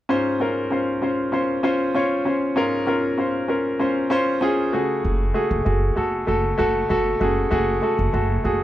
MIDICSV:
0, 0, Header, 1, 3, 480
1, 0, Start_track
1, 0, Key_signature, -5, "major"
1, 0, Tempo, 618557
1, 74, Time_signature, 4, 2, 24, 8
1, 6701, End_track
2, 0, Start_track
2, 0, Title_t, "Grand piano"
2, 0, Program_c, 0, 0
2, 70, Note_on_c, 0, 61, 75
2, 73, Note_on_c, 0, 44, 53
2, 73, Note_on_c, 0, 65, 66
2, 79, Note_on_c, 0, 72, 87
2, 211, Control_c, 0, 64, 127
2, 263, Note_off_c, 0, 61, 0
2, 264, Note_off_c, 0, 65, 0
2, 268, Note_off_c, 0, 72, 0
2, 310, Note_on_c, 0, 61, 61
2, 317, Note_on_c, 0, 65, 59
2, 321, Note_on_c, 0, 70, 69
2, 503, Note_off_c, 0, 61, 0
2, 506, Note_off_c, 0, 65, 0
2, 508, Note_off_c, 0, 70, 0
2, 548, Note_on_c, 0, 61, 55
2, 558, Note_on_c, 0, 65, 51
2, 561, Note_on_c, 0, 72, 62
2, 742, Note_off_c, 0, 61, 0
2, 747, Note_off_c, 0, 65, 0
2, 749, Note_off_c, 0, 72, 0
2, 762, Note_off_c, 0, 44, 0
2, 789, Note_on_c, 0, 61, 58
2, 795, Note_on_c, 0, 65, 53
2, 801, Note_on_c, 0, 72, 61
2, 983, Note_off_c, 0, 61, 0
2, 986, Note_off_c, 0, 65, 0
2, 988, Note_off_c, 0, 72, 0
2, 1025, Note_on_c, 0, 61, 62
2, 1031, Note_on_c, 0, 65, 55
2, 1036, Note_on_c, 0, 72, 72
2, 1220, Note_off_c, 0, 61, 0
2, 1223, Note_off_c, 0, 65, 0
2, 1226, Note_off_c, 0, 72, 0
2, 1267, Note_on_c, 0, 61, 81
2, 1271, Note_on_c, 0, 65, 74
2, 1277, Note_on_c, 0, 72, 87
2, 1461, Note_off_c, 0, 61, 0
2, 1464, Note_off_c, 0, 65, 0
2, 1466, Note_off_c, 0, 72, 0
2, 1510, Note_on_c, 0, 61, 74
2, 1517, Note_on_c, 0, 65, 74
2, 1520, Note_on_c, 0, 73, 80
2, 1703, Note_off_c, 0, 61, 0
2, 1706, Note_off_c, 0, 65, 0
2, 1708, Note_off_c, 0, 73, 0
2, 1748, Note_on_c, 0, 61, 64
2, 1754, Note_on_c, 0, 65, 56
2, 1759, Note_on_c, 0, 72, 64
2, 1942, Note_off_c, 0, 61, 0
2, 1945, Note_off_c, 0, 65, 0
2, 1948, Note_off_c, 0, 72, 0
2, 1985, Note_on_c, 0, 61, 82
2, 1991, Note_on_c, 0, 44, 51
2, 1992, Note_on_c, 0, 65, 75
2, 1997, Note_on_c, 0, 70, 87
2, 2180, Note_off_c, 0, 61, 0
2, 2184, Note_off_c, 0, 65, 0
2, 2187, Note_off_c, 0, 70, 0
2, 2223, Note_on_c, 0, 61, 66
2, 2230, Note_on_c, 0, 65, 61
2, 2236, Note_on_c, 0, 70, 74
2, 2420, Note_off_c, 0, 61, 0
2, 2423, Note_off_c, 0, 65, 0
2, 2426, Note_off_c, 0, 70, 0
2, 2465, Note_on_c, 0, 61, 58
2, 2472, Note_on_c, 0, 65, 54
2, 2479, Note_on_c, 0, 72, 62
2, 2661, Note_off_c, 0, 61, 0
2, 2664, Note_off_c, 0, 65, 0
2, 2667, Note_off_c, 0, 72, 0
2, 2682, Note_off_c, 0, 44, 0
2, 2703, Note_on_c, 0, 61, 58
2, 2707, Note_on_c, 0, 65, 53
2, 2712, Note_on_c, 0, 70, 69
2, 2899, Note_off_c, 0, 61, 0
2, 2902, Note_off_c, 0, 65, 0
2, 2904, Note_off_c, 0, 70, 0
2, 2945, Note_on_c, 0, 61, 65
2, 2948, Note_on_c, 0, 65, 56
2, 2955, Note_on_c, 0, 72, 74
2, 3140, Note_off_c, 0, 61, 0
2, 3142, Note_off_c, 0, 65, 0
2, 3146, Note_off_c, 0, 72, 0
2, 3182, Note_on_c, 0, 61, 88
2, 3187, Note_on_c, 0, 65, 77
2, 3192, Note_on_c, 0, 72, 97
2, 3379, Note_off_c, 0, 61, 0
2, 3382, Note_off_c, 0, 65, 0
2, 3384, Note_off_c, 0, 72, 0
2, 3422, Note_on_c, 0, 61, 78
2, 3430, Note_on_c, 0, 65, 74
2, 3432, Note_on_c, 0, 68, 88
2, 3619, Note_off_c, 0, 61, 0
2, 3623, Note_off_c, 0, 65, 0
2, 3624, Note_off_c, 0, 68, 0
2, 3668, Note_on_c, 0, 57, 68
2, 3670, Note_on_c, 0, 66, 66
2, 3671, Note_on_c, 0, 49, 58
2, 3678, Note_on_c, 0, 68, 78
2, 3685, Control_c, 0, 64, 0
2, 3801, Control_c, 0, 64, 127
2, 4055, Note_off_c, 0, 57, 0
2, 4056, Note_off_c, 0, 66, 0
2, 4060, Note_off_c, 0, 68, 0
2, 4145, Note_on_c, 0, 57, 66
2, 4146, Note_on_c, 0, 66, 61
2, 4153, Note_on_c, 0, 68, 76
2, 4340, Note_off_c, 0, 57, 0
2, 4341, Note_off_c, 0, 66, 0
2, 4345, Note_off_c, 0, 68, 0
2, 4362, Note_off_c, 0, 49, 0
2, 4384, Note_on_c, 0, 57, 58
2, 4390, Note_on_c, 0, 66, 55
2, 4393, Note_on_c, 0, 68, 62
2, 4580, Note_off_c, 0, 57, 0
2, 4583, Note_off_c, 0, 66, 0
2, 4585, Note_off_c, 0, 68, 0
2, 4622, Note_on_c, 0, 57, 65
2, 4629, Note_on_c, 0, 66, 60
2, 4636, Note_on_c, 0, 69, 70
2, 4819, Note_off_c, 0, 57, 0
2, 4822, Note_off_c, 0, 66, 0
2, 4826, Note_off_c, 0, 69, 0
2, 4864, Note_on_c, 0, 57, 69
2, 4869, Note_on_c, 0, 66, 58
2, 4874, Note_on_c, 0, 69, 79
2, 5060, Note_off_c, 0, 57, 0
2, 5062, Note_off_c, 0, 66, 0
2, 5065, Note_off_c, 0, 69, 0
2, 5103, Note_on_c, 0, 57, 90
2, 5111, Note_on_c, 0, 66, 80
2, 5115, Note_on_c, 0, 69, 93
2, 5300, Note_off_c, 0, 57, 0
2, 5303, Note_off_c, 0, 66, 0
2, 5306, Note_off_c, 0, 69, 0
2, 5350, Note_on_c, 0, 57, 82
2, 5356, Note_on_c, 0, 66, 78
2, 5362, Note_on_c, 0, 69, 92
2, 5543, Note_off_c, 0, 57, 0
2, 5546, Note_off_c, 0, 66, 0
2, 5549, Note_off_c, 0, 69, 0
2, 5589, Note_on_c, 0, 57, 65
2, 5592, Note_on_c, 0, 49, 55
2, 5595, Note_on_c, 0, 66, 65
2, 5601, Note_on_c, 0, 68, 73
2, 5783, Note_off_c, 0, 57, 0
2, 5786, Note_off_c, 0, 66, 0
2, 5789, Note_off_c, 0, 68, 0
2, 5825, Note_on_c, 0, 57, 82
2, 5830, Note_on_c, 0, 66, 78
2, 5838, Note_on_c, 0, 68, 87
2, 6020, Note_off_c, 0, 57, 0
2, 6023, Note_off_c, 0, 66, 0
2, 6027, Note_off_c, 0, 68, 0
2, 6069, Note_on_c, 0, 57, 66
2, 6075, Note_on_c, 0, 66, 63
2, 6080, Note_on_c, 0, 69, 72
2, 6262, Note_off_c, 0, 57, 0
2, 6265, Note_off_c, 0, 66, 0
2, 6268, Note_off_c, 0, 69, 0
2, 6282, Note_off_c, 0, 49, 0
2, 6308, Note_on_c, 0, 57, 66
2, 6315, Note_on_c, 0, 66, 57
2, 6321, Note_on_c, 0, 69, 67
2, 6502, Note_off_c, 0, 57, 0
2, 6506, Note_off_c, 0, 66, 0
2, 6509, Note_off_c, 0, 69, 0
2, 6548, Note_on_c, 0, 57, 64
2, 6556, Note_on_c, 0, 66, 56
2, 6560, Note_on_c, 0, 68, 72
2, 6701, Note_off_c, 0, 57, 0
2, 6701, Note_off_c, 0, 66, 0
2, 6701, Note_off_c, 0, 68, 0
2, 6701, End_track
3, 0, Start_track
3, 0, Title_t, "Upright bass"
3, 0, Program_c, 1, 32
3, 3915, Note_on_c, 1, 30, 77
3, 4111, Note_off_c, 1, 30, 0
3, 4274, Note_on_c, 1, 30, 84
3, 4372, Note_off_c, 1, 30, 0
3, 4393, Note_on_c, 1, 30, 76
3, 4590, Note_off_c, 1, 30, 0
3, 4635, Note_on_c, 1, 30, 68
3, 4831, Note_off_c, 1, 30, 0
3, 4876, Note_on_c, 1, 30, 74
3, 5072, Note_off_c, 1, 30, 0
3, 5117, Note_on_c, 1, 30, 77
3, 5313, Note_off_c, 1, 30, 0
3, 5355, Note_on_c, 1, 30, 76
3, 5551, Note_off_c, 1, 30, 0
3, 5594, Note_on_c, 1, 30, 79
3, 5791, Note_off_c, 1, 30, 0
3, 5835, Note_on_c, 1, 30, 80
3, 6031, Note_off_c, 1, 30, 0
3, 6198, Note_on_c, 1, 30, 79
3, 6295, Note_off_c, 1, 30, 0
3, 6315, Note_on_c, 1, 30, 80
3, 6512, Note_off_c, 1, 30, 0
3, 6555, Note_on_c, 1, 30, 75
3, 6701, Note_off_c, 1, 30, 0
3, 6701, End_track
0, 0, End_of_file